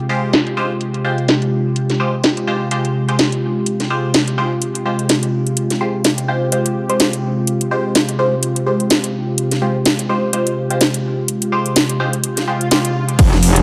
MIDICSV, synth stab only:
0, 0, Header, 1, 2, 480
1, 0, Start_track
1, 0, Key_signature, -4, "minor"
1, 0, Tempo, 476190
1, 1774, Time_signature, 4, 2, 24, 8
1, 13735, End_track
2, 0, Start_track
2, 0, Title_t, "Synth stab"
2, 0, Program_c, 0, 62
2, 94, Note_on_c, 0, 56, 88
2, 94, Note_on_c, 0, 65, 80
2, 94, Note_on_c, 0, 67, 82
2, 94, Note_on_c, 0, 72, 98
2, 322, Note_off_c, 0, 56, 0
2, 322, Note_off_c, 0, 65, 0
2, 322, Note_off_c, 0, 67, 0
2, 322, Note_off_c, 0, 72, 0
2, 573, Note_on_c, 0, 72, 93
2, 574, Note_on_c, 0, 56, 87
2, 574, Note_on_c, 0, 65, 79
2, 574, Note_on_c, 0, 67, 81
2, 729, Note_off_c, 0, 56, 0
2, 729, Note_off_c, 0, 65, 0
2, 729, Note_off_c, 0, 67, 0
2, 729, Note_off_c, 0, 72, 0
2, 1053, Note_on_c, 0, 67, 64
2, 1053, Note_on_c, 0, 72, 78
2, 1054, Note_on_c, 0, 56, 73
2, 1054, Note_on_c, 0, 65, 67
2, 1282, Note_off_c, 0, 56, 0
2, 1282, Note_off_c, 0, 65, 0
2, 1282, Note_off_c, 0, 67, 0
2, 1282, Note_off_c, 0, 72, 0
2, 2013, Note_on_c, 0, 56, 78
2, 2013, Note_on_c, 0, 65, 70
2, 2013, Note_on_c, 0, 67, 70
2, 2013, Note_on_c, 0, 72, 84
2, 2169, Note_off_c, 0, 56, 0
2, 2169, Note_off_c, 0, 65, 0
2, 2169, Note_off_c, 0, 67, 0
2, 2169, Note_off_c, 0, 72, 0
2, 2493, Note_on_c, 0, 56, 80
2, 2493, Note_on_c, 0, 67, 77
2, 2493, Note_on_c, 0, 72, 94
2, 2494, Note_on_c, 0, 65, 75
2, 2709, Note_off_c, 0, 56, 0
2, 2709, Note_off_c, 0, 65, 0
2, 2709, Note_off_c, 0, 67, 0
2, 2709, Note_off_c, 0, 72, 0
2, 2734, Note_on_c, 0, 56, 75
2, 2734, Note_on_c, 0, 65, 69
2, 2734, Note_on_c, 0, 67, 66
2, 2734, Note_on_c, 0, 72, 84
2, 3078, Note_off_c, 0, 56, 0
2, 3078, Note_off_c, 0, 65, 0
2, 3078, Note_off_c, 0, 67, 0
2, 3078, Note_off_c, 0, 72, 0
2, 3110, Note_on_c, 0, 56, 71
2, 3110, Note_on_c, 0, 65, 68
2, 3110, Note_on_c, 0, 67, 66
2, 3110, Note_on_c, 0, 72, 76
2, 3335, Note_off_c, 0, 56, 0
2, 3335, Note_off_c, 0, 65, 0
2, 3335, Note_off_c, 0, 67, 0
2, 3335, Note_off_c, 0, 72, 0
2, 3933, Note_on_c, 0, 56, 89
2, 3933, Note_on_c, 0, 65, 86
2, 3933, Note_on_c, 0, 67, 83
2, 3934, Note_on_c, 0, 72, 99
2, 4162, Note_off_c, 0, 56, 0
2, 4162, Note_off_c, 0, 65, 0
2, 4162, Note_off_c, 0, 67, 0
2, 4162, Note_off_c, 0, 72, 0
2, 4413, Note_on_c, 0, 56, 92
2, 4413, Note_on_c, 0, 65, 79
2, 4413, Note_on_c, 0, 67, 81
2, 4413, Note_on_c, 0, 72, 98
2, 4568, Note_off_c, 0, 65, 0
2, 4569, Note_off_c, 0, 56, 0
2, 4569, Note_off_c, 0, 67, 0
2, 4569, Note_off_c, 0, 72, 0
2, 4894, Note_on_c, 0, 56, 73
2, 4894, Note_on_c, 0, 65, 65
2, 4894, Note_on_c, 0, 67, 65
2, 4894, Note_on_c, 0, 72, 81
2, 5122, Note_off_c, 0, 56, 0
2, 5122, Note_off_c, 0, 65, 0
2, 5122, Note_off_c, 0, 67, 0
2, 5122, Note_off_c, 0, 72, 0
2, 5853, Note_on_c, 0, 56, 77
2, 5853, Note_on_c, 0, 65, 71
2, 5853, Note_on_c, 0, 67, 70
2, 5853, Note_on_c, 0, 72, 86
2, 6009, Note_off_c, 0, 56, 0
2, 6009, Note_off_c, 0, 65, 0
2, 6009, Note_off_c, 0, 67, 0
2, 6009, Note_off_c, 0, 72, 0
2, 6333, Note_on_c, 0, 67, 77
2, 6333, Note_on_c, 0, 72, 94
2, 6334, Note_on_c, 0, 56, 86
2, 6334, Note_on_c, 0, 65, 76
2, 6549, Note_off_c, 0, 56, 0
2, 6549, Note_off_c, 0, 65, 0
2, 6549, Note_off_c, 0, 67, 0
2, 6549, Note_off_c, 0, 72, 0
2, 6573, Note_on_c, 0, 56, 74
2, 6573, Note_on_c, 0, 65, 70
2, 6573, Note_on_c, 0, 67, 69
2, 6573, Note_on_c, 0, 72, 77
2, 6917, Note_off_c, 0, 56, 0
2, 6917, Note_off_c, 0, 65, 0
2, 6917, Note_off_c, 0, 67, 0
2, 6917, Note_off_c, 0, 72, 0
2, 6950, Note_on_c, 0, 56, 75
2, 6950, Note_on_c, 0, 65, 66
2, 6950, Note_on_c, 0, 67, 64
2, 6950, Note_on_c, 0, 72, 80
2, 7175, Note_off_c, 0, 56, 0
2, 7175, Note_off_c, 0, 65, 0
2, 7175, Note_off_c, 0, 67, 0
2, 7175, Note_off_c, 0, 72, 0
2, 7774, Note_on_c, 0, 56, 87
2, 7774, Note_on_c, 0, 65, 83
2, 7774, Note_on_c, 0, 67, 84
2, 7774, Note_on_c, 0, 72, 98
2, 8002, Note_off_c, 0, 56, 0
2, 8002, Note_off_c, 0, 65, 0
2, 8002, Note_off_c, 0, 67, 0
2, 8002, Note_off_c, 0, 72, 0
2, 8254, Note_on_c, 0, 56, 90
2, 8254, Note_on_c, 0, 65, 84
2, 8254, Note_on_c, 0, 67, 80
2, 8254, Note_on_c, 0, 72, 97
2, 8409, Note_off_c, 0, 56, 0
2, 8409, Note_off_c, 0, 65, 0
2, 8409, Note_off_c, 0, 67, 0
2, 8409, Note_off_c, 0, 72, 0
2, 8733, Note_on_c, 0, 67, 66
2, 8733, Note_on_c, 0, 72, 81
2, 8734, Note_on_c, 0, 56, 74
2, 8734, Note_on_c, 0, 65, 69
2, 8962, Note_off_c, 0, 56, 0
2, 8962, Note_off_c, 0, 65, 0
2, 8962, Note_off_c, 0, 67, 0
2, 8962, Note_off_c, 0, 72, 0
2, 9693, Note_on_c, 0, 56, 76
2, 9693, Note_on_c, 0, 65, 71
2, 9693, Note_on_c, 0, 67, 71
2, 9693, Note_on_c, 0, 72, 86
2, 9849, Note_off_c, 0, 56, 0
2, 9849, Note_off_c, 0, 65, 0
2, 9849, Note_off_c, 0, 67, 0
2, 9849, Note_off_c, 0, 72, 0
2, 10173, Note_on_c, 0, 56, 83
2, 10173, Note_on_c, 0, 65, 76
2, 10173, Note_on_c, 0, 67, 77
2, 10173, Note_on_c, 0, 72, 96
2, 10389, Note_off_c, 0, 56, 0
2, 10389, Note_off_c, 0, 65, 0
2, 10389, Note_off_c, 0, 67, 0
2, 10389, Note_off_c, 0, 72, 0
2, 10413, Note_on_c, 0, 65, 69
2, 10413, Note_on_c, 0, 67, 65
2, 10414, Note_on_c, 0, 56, 73
2, 10414, Note_on_c, 0, 72, 83
2, 10757, Note_off_c, 0, 65, 0
2, 10757, Note_off_c, 0, 67, 0
2, 10758, Note_off_c, 0, 56, 0
2, 10758, Note_off_c, 0, 72, 0
2, 10790, Note_on_c, 0, 56, 70
2, 10790, Note_on_c, 0, 65, 66
2, 10790, Note_on_c, 0, 67, 65
2, 10790, Note_on_c, 0, 72, 76
2, 11014, Note_off_c, 0, 67, 0
2, 11014, Note_off_c, 0, 72, 0
2, 11015, Note_off_c, 0, 56, 0
2, 11015, Note_off_c, 0, 65, 0
2, 11613, Note_on_c, 0, 72, 99
2, 11614, Note_on_c, 0, 56, 93
2, 11614, Note_on_c, 0, 65, 81
2, 11614, Note_on_c, 0, 67, 85
2, 11842, Note_off_c, 0, 56, 0
2, 11842, Note_off_c, 0, 65, 0
2, 11842, Note_off_c, 0, 67, 0
2, 11842, Note_off_c, 0, 72, 0
2, 12093, Note_on_c, 0, 65, 80
2, 12094, Note_on_c, 0, 56, 92
2, 12094, Note_on_c, 0, 67, 82
2, 12094, Note_on_c, 0, 72, 99
2, 12249, Note_off_c, 0, 56, 0
2, 12249, Note_off_c, 0, 65, 0
2, 12249, Note_off_c, 0, 67, 0
2, 12249, Note_off_c, 0, 72, 0
2, 12574, Note_on_c, 0, 56, 77
2, 12574, Note_on_c, 0, 67, 67
2, 12574, Note_on_c, 0, 72, 79
2, 12575, Note_on_c, 0, 65, 68
2, 12789, Note_off_c, 0, 56, 0
2, 12789, Note_off_c, 0, 65, 0
2, 12789, Note_off_c, 0, 67, 0
2, 12789, Note_off_c, 0, 72, 0
2, 12814, Note_on_c, 0, 56, 88
2, 12814, Note_on_c, 0, 65, 76
2, 12814, Note_on_c, 0, 67, 80
2, 12814, Note_on_c, 0, 72, 93
2, 13042, Note_off_c, 0, 56, 0
2, 13042, Note_off_c, 0, 65, 0
2, 13042, Note_off_c, 0, 67, 0
2, 13042, Note_off_c, 0, 72, 0
2, 13735, End_track
0, 0, End_of_file